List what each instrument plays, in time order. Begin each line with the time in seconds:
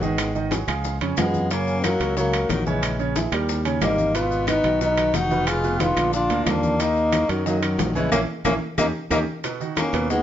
Already playing: fingered electric bass G#1
0.02 grand piano D#3 D#4 D#5, tenor saxophone G#3, trombone B3, high conga, maracas
0.18 high bongo, high conga, high timbale, claves, maracas
0.35 grand piano D#3 D#4 D#5, high bongo, high conga, maracas
0.51 grand piano F#3 F#4 G#4, high bongo, high conga, high timbale, maracas
0.68 fingered electric bass C#2, grand piano F3 F4 G#4, high bongo, high timbale, claves, maracas
0.84 high bongo, high conga, maracas
1.01 fingered electric bass F2, grand piano C#3 C#4 C#5, high conga, high timbale, maracas
1.17 fingered electric bass F#2, grand piano F3 F4 G#4, tenor saxophone G#3, trombone B3, high bongo, low bongo, high conga, high timbale, low timbale, claves, maracas
1.34 high bongo, high conga, maracas
1.51 grand piano C#3 C#4 C#5, tenor saxophone A#3, trombone C#4, high bongo, high conga, high timbale, maracas
1.67 high conga, maracas
1.84 grand piano F#3 F#4 A#4, tenor saxophone F#3, trombone A#3, high bongo, high conga, high timbale, claves, maracas
2.00 fingered electric bass C#2, grand piano F#3 F#4 A#4, high conga, high timbale, maracas
2.17 grand piano C#3 C#4 C#5, tenor saxophone F#3, trombone A#3, high bongo, high conga, maracas
2.33 grand piano F#3 F#4 A#4, high conga, high timbale, claves, maracas
2.49 fingered electric bass A#1, tenor saxophone D#3, trombone F#3, high bongo, low bongo, high conga, high timbale, maracas
2.66 grand piano C#3 C#4 C#5, tenor saxophone E3, trombone G#3, high conga, maracas
2.83 high bongo, high timbale, claves, maracas
2.99 grand piano C#3 C#4 C#5, high bongo, high conga, maracas
3.15 grand piano E3 E4 G#4, high bongo, high conga, high timbale, maracas
3.32 fingered electric bass D#2, grand piano G3 G4 A#4, high bongo, high timbale, claves, maracas
3.48 high bongo, high conga, maracas
3.65 grand piano C#3 C#4 C#5, high conga, high timbale, maracas
3.81 fingered electric bass G#1, grand piano G3 G4 A#4, tenor saxophone A#3, trombone D#4, high bongo, low bongo, high conga, high timbale, low timbale, claves, maracas
3.98 high bongo, high conga, maracas
4.14 grand piano B2 B3 B4, tenor saxophone B3, trombone F4, high bongo, high conga, high timbale, maracas
4.31 high conga, maracas
4.47 grand piano D#3 D#4 F#4, tenor saxophone B3, trombone D#4, high bongo, high conga, high timbale, claves, maracas
4.64 fingered electric bass B1, grand piano D#3 D#4 F#4, high conga, high timbale, maracas
4.81 grand piano B2 B3 B4, tenor saxophone B3, trombone D#4, high bongo, high conga, maracas
4.97 grand piano D#3 D#4 F#4, high conga, high timbale, claves, maracas
5.14 fingered electric bass F1, tenor saxophone D#4, trombone F#4, high bongo, low bongo, high conga, high timbale, maracas
5.30 grand piano B2 B3 B4, high conga, maracas
5.47 tenor saxophone F4, trombone G#4, high bongo, high conga, high timbale, claves, maracas
5.64 grand piano B2 B3 B4, high bongo, high conga, maracas
5.80 grand piano D#3 D#4 F4, tenor saxophone B3, trombone F4, high bongo, high conga, high timbale, maracas
5.97 fingered electric bass A#1, grand piano D3 D4 F4, high timbale, claves, maracas
6.13 tenor saxophone D4, trombone F4, high bongo, high conga, maracas
6.30 fingered electric bass D2, grand piano A#2 A#3 A#4, high conga, high timbale, maracas
6.46 fingered electric bass D#2, grand piano D3 D4 F4, tenor saxophone A#3, trombone D4, high bongo, low bongo, high conga, high timbale, low timbale, claves, maracas
6.63 high conga, maracas
6.79 grand piano D#3 D#4 D#5, tenor saxophone A#3, trombone D#4, high bongo, high conga, high timbale, maracas
6.96 high conga, maracas
7.12 grand piano F#3 F#4 A#4, high bongo, high conga, high timbale, claves, maracas
7.29 fingered electric bass F#2, tenor saxophone D#3, grand piano F#3 F#4 A#4, trombone F#3, high conga, high timbale, maracas
7.46 grand piano D#3 D#4 D#5, tenor saxophone F#3, trombone A#3, high bongo, high conga, maracas
7.62 tenor saxophone D#3, grand piano F#3 F#4 A#4, trombone F#3, high conga, high timbale, claves, maracas
7.79 fingered electric bass A#1, high bongo, low bongo, high conga, high timbale, low timbale, maracas
7.95 grand piano C#3 C#4 C#5, tenor saxophone E3, trombone G#3, high conga, maracas
8.12 fingered electric bass A#1, tenor saxophone A#3, grand piano A#3 C#4 E4, trombone C#4, low bongo, high conga, high timbale, claves, maracas
8.45 fingered electric bass A#1, grand piano A#3 C#4 E4, tenor saxophone A#3, trombone C#4, low bongo, high conga, high timbale, claves, maracas
8.78 fingered electric bass D#2, tenor saxophone A#3, grand piano C#4 D#4 G4, trombone D#4, low bongo, high conga, high timbale, claves, maracas
9.10 fingered electric bass D#2, tenor saxophone A#3, grand piano C#4 D#4 G4, trombone D#4, low bongo, high conga, high timbale, claves, maracas
9.44 grand piano B2 B3 B4, high bongo, high conga, high timbale, maracas
9.60 grand piano D#3 D#4 F#4, high conga, maracas
9.77 tenor saxophone A#3, trombone C#4, high bongo, high conga, high timbale, claves, maracas
9.93 fingered electric bass D#2, grand piano B2 B3 B4, high conga, high timbale, maracas
10.10 grand piano D#3 D#4 F#4, tenor saxophone G#3, trombone B3, high bongo, high conga, maracas